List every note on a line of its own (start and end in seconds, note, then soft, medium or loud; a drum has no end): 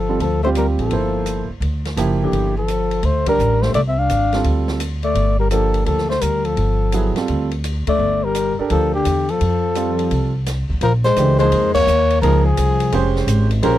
0.00 0.17 G1 medium
0.00 0.20 F3 medium
0.00 0.21 A4 medium
0.09 0.20 G3 medium
0.09 0.20 C4 medium
0.09 0.20 F4 medium
0.09 0.20 A4 medium
0.20 0.75 D2 medium
0.20 0.42 F3 medium
0.20 0.43 A4 medium
0.20 ride soft
0.43 0.89 G3 medium
0.43 0.49 A3 medium
0.43 0.90 C4 medium
0.43 0.90 F4 soft
0.43 0.90 G4 medium
0.43 0.50 C5 medium
0.55 0.67 G3 medium
0.55 0.67 A#4 medium
0.55 hi-hat pedal soft
0.55 ride medium
0.78 0.90 A1 medium
0.78 1.46 F3 medium
0.78 1.46 A4 medium
0.78 ride soft
0.90 1.45 G1 medium
0.90 1.46 A#3 medium
0.90 1.46 E4 soft
0.90 1.46 A4 soft
0.90 1.46 C5 medium
0.90 ride soft
1.26 hi-hat pedal soft
1.26 ride soft
1.49 muted upright bass stroke soft
1.60 1.94 D2 medium
1.60 ride soft
1.85 snare soft
1.85 ride soft
1.97 2.30 F#1 medium
1.97 2.51 F3 medium
1.97 2.51 A#3 medium
1.97 2.52 E4 medium
1.97 2.52 G4 medium
1.97 hi-hat pedal medium
1.97 ride medium
2.23 2.55 D3 medium
2.23 2.55 G4 medium
2.32 2.99 G1 medium
2.32 ride soft
2.58 3.05 F3 medium
2.58 3.07 A4 medium
2.68 hi-hat pedal soft
2.68 ride medium
2.91 ride soft
3.03 3.36 D2 medium
3.03 3.27 A3 medium
3.03 3.28 C5 medium
3.03 ride soft
3.26 3.64 G3 medium
3.26 3.73 G3 medium
3.26 3.73 D4 medium
3.26 3.73 G4 medium
3.26 3.64 A#4 medium
3.26 3.73 A#4 medium
3.26 kick medium
3.26 ride medium
3.39 3.72 A1 medium
3.39 hi-hat pedal medium
3.62 3.74 A3 medium
3.62 3.74 C5 medium
3.62 snare soft
3.74 4.07 C2 medium
3.74 3.81 A3 medium
3.74 3.81 D5 medium
3.74 ride medium
3.88 3.99 C4 medium
3.88 4.00 E5 medium
3.98 4.45 D4 medium
3.98 4.46 F5 medium
4.09 4.43 G#1 medium
4.09 hi-hat pedal soft
4.09 ride medium
4.33 4.79 G3 medium
4.33 4.79 C4 medium
4.33 4.79 F4 medium
4.33 4.79 A4 medium
4.33 snare soft
4.33 ride soft
4.44 5.12 D2 medium
4.44 ride medium
4.68 snare medium
4.80 hi-hat pedal medium
4.80 ride medium
5.03 5.37 A3 medium
5.03 5.37 D5 medium
5.03 ride soft
5.15 5.83 G1 medium
5.15 ride medium
5.39 5.50 G3 medium
5.39 5.50 A#4 medium
5.50 5.84 F3 medium
5.50 6.06 A#3 medium
5.50 6.05 D4 soft
5.50 6.06 G4 soft
5.50 5.84 A4 medium
5.50 6.05 A4 medium
5.50 hi-hat pedal medium
5.50 ride medium
5.74 ride soft
5.85 6.20 D2 medium
5.85 6.08 F3 medium
5.85 6.08 A4 medium
5.85 ride soft
5.98 snare soft
6.08 6.22 A3 medium
6.08 6.23 C5 medium
6.08 snare soft
6.21 6.55 D2 medium
6.21 6.46 G3 medium
6.21 6.47 A#4 medium
6.21 hi-hat pedal medium
6.21 ride medium
6.45 7.16 F3 medium
6.45 7.16 A4 medium
6.45 ride soft
6.57 7.12 G1 medium
6.57 ride soft
6.92 7.14 F#3 medium
6.92 7.14 B3 medium
6.92 7.14 E4 medium
6.92 7.15 G#4 medium
6.92 hi-hat pedal soft
6.92 ride medium
7.16 7.47 G3 medium
7.16 7.47 C4 medium
7.16 7.47 F4 medium
7.16 7.48 A4 medium
7.16 muted upright bass stroke soft
7.16 snare soft
7.16 ride soft
7.28 7.83 D2 medium
7.28 ride soft
7.51 ride soft
7.64 hi-hat pedal soft
7.64 ride medium
7.87 8.26 A3 medium
7.87 8.26 D5 medium
7.87 muted upright bass stroke soft
7.87 kick medium
7.87 ride medium
7.99 8.54 G1 medium
8.24 8.59 G3 medium
8.24 8.59 A#4 medium
8.35 hi-hat pedal medium
8.35 ride medium
8.59 9.04 D4 medium
8.59 9.04 G4 medium
8.59 9.04 A4 medium
8.59 9.04 A#4 medium
8.59 muted upright bass stroke soft
8.70 9.03 D2 medium
8.70 8.92 F3 medium
8.70 8.92 A4 medium
8.70 ride medium
8.94 9.32 D3 medium
8.94 9.32 G4 medium
9.05 9.38 E2 medium
9.05 hi-hat pedal soft
9.05 ride medium
9.29 10.48 F3 medium
9.29 10.47 A4 medium
9.29 ride soft
9.41 10.08 F2 medium
9.41 ride medium
9.75 10.30 G3 medium
9.75 10.30 C4 soft
9.75 10.30 F4 medium
9.75 10.30 A4 medium
9.75 hi-hat pedal soft
9.75 ride soft
9.99 ride soft
10.11 10.65 C2 medium
10.11 ride medium
10.46 snare soft
10.46 hi-hat pedal medium
10.46 ride medium
10.69 10.80 A1 medium
10.69 kick soft
10.81 11.16 A#1 medium
10.81 10.93 F3 medium
10.81 10.93 A#4 medium
10.81 ride medium
11.04 11.38 G#3 medium
11.04 11.37 C5 loud
11.04 snare soft
11.16 11.51 C#2 medium
11.16 11.38 E3 medium
11.16 11.38 A3 medium
11.16 11.38 D4 medium
11.16 11.39 G4 medium
11.16 hi-hat pedal medium
11.16 ride medium
11.39 11.71 F3 medium
11.39 11.72 G#3 medium
11.39 11.71 A#3 medium
11.39 11.72 D#4 medium
11.39 11.72 G#4 medium
11.39 11.72 C5 loud
11.39 ride soft
11.52 11.86 F2 medium
11.52 ride medium
11.74 12.19 A#3 medium
11.74 12.19 C#5 loud
11.74 kick loud
11.74 crash medium
11.87 12.21 D#2 medium
11.87 hi-hat pedal medium
12.10 ride soft
12.21 12.57 C#2 medium
12.21 12.43 F3 medium
12.21 12.44 F3 medium
12.21 12.44 A#3 medium
12.21 12.44 D#4 medium
12.21 12.44 G#4 medium
12.21 12.43 A#4 loud
12.21 ride medium
12.44 13.11 F3 medium
12.44 13.12 G#4 medium
12.57 12.92 C2 medium
12.57 hi-hat pedal medium
12.57 ride medium
12.80 ride medium
12.92 13.26 F1 medium
12.92 13.46 G#3 medium
12.92 13.47 C#4 medium
12.92 13.47 G4 medium
12.92 13.47 C5 medium
12.92 ride medium
13.16 snare soft
13.27 13.62 G#1 medium
13.27 hi-hat pedal medium
13.27 ride medium
13.51 ride soft
13.63 13.78 A#1 medium
13.63 13.78 F3 medium
13.63 13.78 G#3 medium
13.63 13.78 C#4 medium
13.63 13.78 G4 medium
13.63 13.78 A#4 medium
13.63 13.78 C5 medium
13.63 ride medium